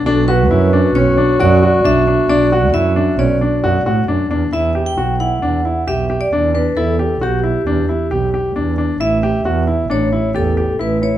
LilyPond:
<<
  \new Staff \with { instrumentName = "Vibraphone" } { \time 5/4 \key e \dorian \tempo 4 = 134 a'8 b'4. cis''4 d''4 e''4 | d''4 e''4 d''4. r4. | e''8. g''8. fis''4. e''8. d''8. b'8 | a'4 g'2. r4 |
e''2 cis''4 a'4 b'8 cis''8 | }
  \new Staff \with { instrumentName = "Clarinet" } { \time 5/4 \key e \dorian fis'1~ fis'4~ | fis'1~ fis'8 r8 | r1 r4 | r1 r4 |
r1 r4 | }
  \new Staff \with { instrumentName = "Grand piano" } { \time 5/4 \key e \dorian d'8 fis'8 e'8 d'8 cis'8 d'8 fis'8 fis'8 d'8 d'8 | d'8 fis'8 e'8 d'8 cis'8 d'8 fis'8 fis'8 d'8 d'8 | e'8 g'8 fis'8 e'8 d'8 e'8 g'8 g'8 d'8 d'8 | e'8 g'8 fis'8 e'8 d'8 e'8 g'8 g'8 d'8 d'8 |
e'8 g'8 fis'8 e'8 d'8 e'8 g'8 g'8 e'8 e'8 | }
  \new Staff \with { instrumentName = "Double bass" } { \clef bass \time 5/4 \key e \dorian b,,4 fis,4 b,,8 r8 fis,4 b,,4 | b,,4 fis,4 b,,8 r8 fis,8 a,8 fis,8 e,8 | e,4 b,,4 e,8 r8 b,,4 e,4 | e,4 b,,4 e,8 r8 b,,4 e,4 |
a,,4 e,4 a,,8 r8 e,4 a,,4 | }
>>